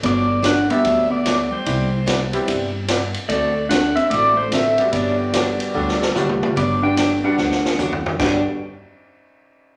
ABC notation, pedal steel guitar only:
X:1
M:4/4
L:1/8
Q:"Swing" 1/4=147
K:G
V:1 name="Pedal steel guitar"
d2 f e2 d2 c- | c3 z4 z | d2 f e d c e2 | d6 z2 |
d g2 f4 z | g z6 z |]